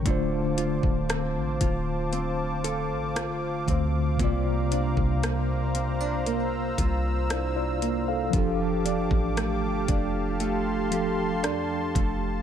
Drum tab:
HH |x-x-x-x-x-x-x-x-|x-x-x-x-x-x-x-x-|x-x-x-x-x-x-x-x-|
SD |----r-------r---|----r-------r---|----r-------r---|
BD |o--o--o-------o-|o--o------o-----|o--o--o-------o-|